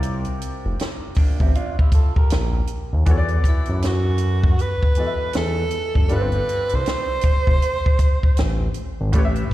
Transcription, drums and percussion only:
0.03 closed hi-hat medium
0.25 closed hi-hat soft
0.42 closed hi-hat medium
0.79 snare medium
0.79 closed hi-hat medium
1.15 kick medium
1.15 open hi-hat soft
1.40 kick medium
1.55 closed hi-hat medium
1.79 kick medium
1.92 kick medium
1.92 closed hi-hat medium
2.16 kick medium
2.30 snare loud
2.30 closed hi-hat medium
2.67 closed hi-hat medium
3.06 kick medium
3.06 closed hi-hat medium
3.28 closed hi-hat soft
3.44 kick medium
3.44 closed hi-hat medium
3.65 closed hi-hat soft
3.82 snare medium
3.82 closed hi-hat medium
4.18 closed hi-hat medium
4.44 kick medium
4.59 closed hi-hat medium
4.83 kick medium
4.95 closed hi-hat medium
5.33 snare loud
5.33 closed hi-hat medium
5.71 closed hi-hat medium
5.95 kick medium
6.09 closed hi-hat medium
6.32 closed hi-hat soft
6.49 closed hi-hat medium
6.69 closed hi-hat soft
6.86 snare medium
6.86 closed hi-hat medium
7.21 kick medium
7.21 closed hi-hat medium
7.47 kick medium
7.62 closed hi-hat medium
7.86 kick medium
7.99 kick medium
7.99 closed hi-hat medium
8.23 kick medium
8.37 snare loud
8.37 closed hi-hat medium
8.74 closed hi-hat medium
9.13 kick medium
9.13 closed hi-hat medium
9.35 closed hi-hat soft

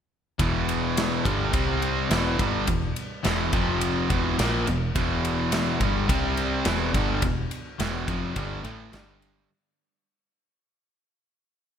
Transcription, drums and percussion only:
0.39 kick loud
0.39 ride loud
0.69 ride medium
0.97 snare loud
0.97 ride loud
1.25 kick loud
1.25 ride medium
1.53 kick loud
1.53 ride loud
1.82 ride medium
2.11 snare loud
2.11 ride medium
2.39 kick loud
2.39 ride medium
2.67 kick medium
2.67 ride loud
2.96 ride medium
3.24 snare loud
3.24 ride medium
3.53 kick loud
3.53 ride medium
3.81 ride medium
4.10 kick medium
4.10 ride medium
4.39 snare loud
4.39 ride medium
4.67 ride medium
4.96 kick loud
4.96 ride loud
5.25 ride medium
5.52 snare loud
5.52 ride loud
5.81 kick loud
5.81 ride medium
6.09 kick loud
6.09 ride loud
6.37 ride medium
6.65 snare loud
6.65 ride loud
6.94 kick loud
6.94 ride medium
7.22 kick loud
7.22 ride loud
7.51 ride medium
7.80 snare loud
7.80 ride loud
8.08 kick loud
8.08 ride medium
8.36 kick loud
8.36 ride medium
8.64 ride medium
8.93 snare loud
8.93 ride medium
9.22 ride medium

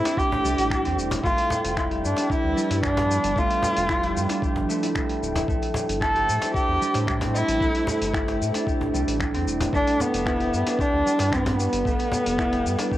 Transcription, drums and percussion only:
0.05 cajon slap medium
0.05 closed hi-hat medium
0.05 cabasa soft
0.17 kick loud
0.17 cabasa soft
0.32 cajon bass medium
0.45 cabasa medium
0.58 closed hi-hat medium
0.58 cabasa soft
0.70 finger snap loud
0.70 kick loud
0.70 cabasa soft
0.85 closed hi-hat soft
0.99 cabasa medium
1.11 cajon bass medium
1.11 closed hi-hat medium
1.11 cabasa soft
1.24 kick loud
1.24 cabasa soft
1.38 cajon slap soft
1.38 closed hi-hat soft
1.50 cajon bass loud
1.50 cabasa medium
1.65 closed hi-hat medium
1.65 cabasa soft
1.77 finger snap loud
1.77 kick loud
1.77 cabasa soft
1.91 closed hi-hat soft
2.05 cabasa medium
2.17 cajon slap medium
2.17 closed hi-hat medium
2.17 cabasa soft
2.30 kick loud
2.30 cabasa soft
2.58 cabasa medium
2.71 cajon slap medium
2.71 closed hi-hat soft
2.71 cabasa soft
2.83 finger snap loud
2.83 kick loud
2.83 cabasa soft
2.97 cajon bass loud
2.97 closed hi-hat soft
3.11 cabasa medium
3.24 closed hi-hat medium
3.24 cabasa soft
3.36 kick loud
3.36 cabasa soft
3.50 closed hi-hat soft
3.63 cajon bass loud
3.63 cabasa medium
3.77 closed hi-hat medium
3.77 cabasa soft
3.89 finger snap loud
3.89 kick loud
3.89 cabasa soft
4.03 cajon slap medium
4.03 closed hi-hat soft
4.17 cabasa medium
4.29 cajon slap medium
4.29 closed hi-hat medium
4.29 cabasa medium
4.42 kick loud
4.42 cabasa soft
4.56 cajon bass medium
4.70 cabasa medium
4.83 closed hi-hat soft
4.83 cabasa soft
4.95 finger snap medium
4.95 kick loud
4.95 cabasa soft
5.09 closed hi-hat soft
5.23 cabasa medium
5.36 cajon bass medium
5.36 closed hi-hat soft
5.36 cabasa soft
5.48 kick loud
5.48 cabasa soft
5.62 cajon slap soft
5.62 closed hi-hat soft
5.74 cajon bass medium
5.74 cabasa medium
5.89 closed hi-hat medium
5.89 cabasa soft
6.01 finger snap loud
6.01 kick loud
6.01 cabasa soft
6.16 closed hi-hat soft
6.29 cabasa medium
6.42 cajon slap medium
6.42 closed hi-hat medium
6.42 cabasa soft
6.54 kick loud
6.54 cabasa soft
6.82 cabasa medium
6.94 cajon slap medium
6.94 closed hi-hat medium
6.94 cabasa soft
7.07 finger snap loud
7.07 kick loud
7.07 cabasa soft
7.21 cajon bass loud
7.21 closed hi-hat soft
7.36 cabasa medium
7.48 closed hi-hat medium
7.48 cabasa soft
7.61 kick loud
7.61 cabasa soft
7.75 closed hi-hat soft
7.87 cajon bass medium
7.87 cabasa medium
8.02 closed hi-hat medium
8.02 cabasa soft
8.14 finger snap medium
8.14 kick loud
8.14 cabasa soft
8.28 cajon slap medium
8.28 closed hi-hat soft
8.42 cabasa medium
8.54 cajon slap medium
8.54 closed hi-hat medium
8.54 cabasa soft
8.67 kick loud
8.67 cabasa soft
8.81 cajon bass medium
8.95 cabasa medium
9.08 closed hi-hat medium
9.08 cabasa soft
9.20 finger snap loud
9.20 kick loud
9.20 cabasa soft
9.35 closed hi-hat soft
9.48 cabasa medium
9.60 cajon bass medium
9.60 closed hi-hat medium
9.60 cabasa soft
9.73 kick loud
9.73 cabasa soft
9.87 cajon slap soft
9.87 closed hi-hat soft
10.00 cajon bass medium
10.00 cabasa medium
10.14 closed hi-hat medium
10.14 cabasa soft
10.26 finger snap medium
10.26 kick loud
10.26 cabasa soft
10.40 closed hi-hat soft
10.54 cabasa medium
10.67 cajon slap medium
10.67 closed hi-hat medium
10.67 cabasa soft
10.79 kick loud
10.79 cabasa soft
11.07 cabasa medium
11.19 cajon slap medium
11.19 closed hi-hat medium
11.19 cabasa soft
11.32 finger snap loud
11.32 kick loud
11.32 cabasa soft
11.46 cajon bass loud
11.46 closed hi-hat soft
11.60 cabasa medium
11.73 closed hi-hat medium
11.73 cabasa soft
11.85 kick loud
11.85 cabasa soft
11.99 cajon slap soft
11.99 closed hi-hat soft
12.12 cajon bass medium
12.12 cabasa medium
12.26 closed hi-hat medium
12.26 cabasa soft
12.38 finger snap loud
12.38 kick loud
12.38 cabasa soft
12.53 cajon slap medium
12.53 closed hi-hat soft
12.66 cabasa medium
12.79 cajon slap medium
12.79 closed hi-hat medium
12.79 cabasa soft
12.92 kick loud
12.92 cabasa soft

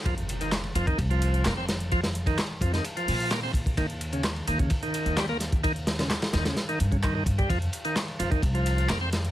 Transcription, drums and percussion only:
0.05 kick loud
0.05 closed hi-hat soft
0.05 ride medium
0.18 closed hi-hat soft
0.29 closed hi-hat medium
0.29 ride medium
0.41 closed hi-hat soft
0.41 ride soft
0.52 snare loud
0.52 clap loud
0.52 closed hi-hat soft
0.52 ride medium
0.64 ride medium
0.75 closed hi-hat medium
0.75 ride medium
0.87 kick loud
0.87 closed hi-hat soft
0.98 kick loud
0.98 closed hi-hat soft
0.98 ride medium
1.11 closed hi-hat soft
1.22 closed hi-hat medium
1.22 ride medium
1.34 closed hi-hat soft
1.44 snare loud
1.44 clap loud
1.44 closed hi-hat soft
1.44 ride medium
1.68 snare loud
1.68 closed hi-hat medium
1.68 ride medium
1.80 closed hi-hat soft
1.92 kick medium
1.92 closed hi-hat soft
1.92 ride medium
2.03 snare loud
2.03 closed hi-hat soft
2.03 ride medium
2.15 closed hi-hat medium
2.26 kick medium
2.26 closed hi-hat soft
2.26 ride medium
2.38 snare loud
2.38 clap loud
2.38 closed hi-hat soft
2.38 ride medium
2.61 kick medium
2.61 closed hi-hat medium
2.61 ride medium
2.73 snare medium
2.73 closed hi-hat soft
2.84 closed hi-hat soft
2.84 ride medium
2.97 closed hi-hat soft
3.08 closed hi-hat medium
3.08 open hi-hat medium
3.20 closed hi-hat soft
3.31 snare loud
3.31 clap loud
3.31 closed hi-hat soft
3.31 ride medium
3.53 kick medium
3.53 closed hi-hat medium
3.53 ride medium
3.66 kick loud
3.66 closed hi-hat soft
3.77 kick loud
3.77 closed hi-hat soft
3.77 ride loud
3.90 closed hi-hat soft
4.01 closed hi-hat medium
4.01 ride medium
4.12 closed hi-hat soft
4.12 ride soft
4.23 snare loud
4.23 clap loud
4.23 closed hi-hat soft
4.23 ride medium
4.36 ride soft
4.47 closed hi-hat medium
4.47 ride medium
4.59 kick medium
4.59 closed hi-hat soft
4.70 kick loud
4.70 closed hi-hat soft
4.70 ride medium
4.83 closed hi-hat soft
4.94 closed hi-hat medium
4.94 ride medium
5.06 closed hi-hat soft
5.17 snare loud
5.17 clap loud
5.17 closed hi-hat soft
5.17 ride medium
5.40 snare soft
5.40 closed hi-hat medium
5.40 ride medium
5.52 kick loud
5.52 closed hi-hat soft
5.64 kick loud
5.64 closed hi-hat soft
5.64 ride medium
5.76 closed hi-hat soft
5.87 snare loud
5.87 closed hi-hat medium
5.87 ride medium
5.99 snare loud
5.99 closed hi-hat soft
5.99 ride medium
6.10 snare loud
6.10 clap loud
6.10 closed hi-hat soft
6.10 ride medium
6.22 snare loud
6.22 ride medium
6.33 snare loud
6.33 closed hi-hat medium
6.33 ride medium
6.45 snare loud
6.45 closed hi-hat soft
6.45 ride medium
6.57 snare loud
6.57 closed hi-hat soft
6.57 ride medium
6.69 closed hi-hat soft
6.69 ride soft
6.80 closed hi-hat medium
6.80 ride medium
6.92 kick medium
6.92 closed hi-hat soft
7.03 kick loud
7.03 clap loud
7.03 closed hi-hat soft
7.03 ride medium
7.26 kick loud
7.26 closed hi-hat medium
7.26 ride medium
7.39 kick loud
7.39 closed hi-hat soft
7.50 kick loud
7.50 closed hi-hat soft
7.50 ride medium
7.62 closed hi-hat soft
7.73 closed hi-hat medium
7.73 ride medium
7.85 closed hi-hat soft
7.85 ride soft
7.96 snare loud
7.96 clap loud
7.96 closed hi-hat soft
7.96 ride medium
8.08 ride soft
8.20 closed hi-hat medium
8.20 ride medium
8.32 kick medium
8.32 closed hi-hat soft
8.42 kick loud
8.42 closed hi-hat soft
8.42 ride medium
8.55 closed hi-hat soft
8.66 closed hi-hat medium
8.66 ride medium
8.78 closed hi-hat soft
8.89 snare loud
8.89 clap loud
8.89 closed hi-hat soft
8.89 ride medium
9.13 snare loud
9.13 closed hi-hat medium
9.13 ride medium
9.25 closed hi-hat soft

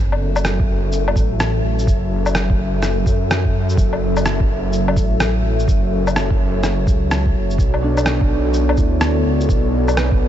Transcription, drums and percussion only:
0.12 low woodblock soft
0.36 low woodblock medium
0.36 shaker medium
0.45 cross-stick loud
0.45 shaker medium
0.60 kick medium
0.93 shaker medium
1.08 low woodblock medium
1.16 kick medium
1.16 shaker medium
1.40 cross-stick loud
1.40 shaker medium
1.79 shaker soft
1.87 kick loud
1.87 shaker medium
2.26 low woodblock soft
2.26 shaker medium
2.35 cross-stick loud
2.35 shaker medium
2.50 kick loud
2.83 cross-stick medium
2.83 shaker medium
3.06 kick medium
3.06 shaker medium
3.31 cross-stick loud
3.31 shaker medium
3.45 kick medium
3.69 shaker soft
3.77 kick loud
3.77 shaker medium
3.93 low woodblock soft
4.17 low woodblock soft
4.17 shaker medium
4.26 cross-stick loud
4.26 shaker medium
4.40 kick loud
4.73 shaker medium
4.88 low woodblock medium
4.96 kick loud
4.96 shaker medium
5.20 cross-stick loud
5.20 shaker medium
5.59 shaker soft
5.68 kick loud
5.68 shaker medium
6.07 low woodblock soft
6.07 shaker medium
6.16 cross-stick loud
6.16 shaker medium
6.31 kick loud
6.63 cross-stick medium
6.63 shaker medium
6.87 kick loud
6.87 shaker soft
7.11 cross-stick loud
7.11 shaker medium
7.26 kick medium
7.50 shaker soft
7.58 kick loud
7.58 shaker soft
7.74 low woodblock soft
7.97 low woodblock soft
7.97 shaker soft
8.06 cross-stick loud
8.06 shaker medium
8.21 kick medium
8.54 shaker medium
8.69 low woodblock medium
8.77 kick loud
8.77 shaker soft
9.01 cross-stick loud
9.01 shaker medium
9.41 shaker soft
9.49 kick loud
9.49 shaker soft
9.88 low woodblock soft
9.88 shaker soft
9.97 cross-stick loud
9.97 shaker soft
10.12 kick medium

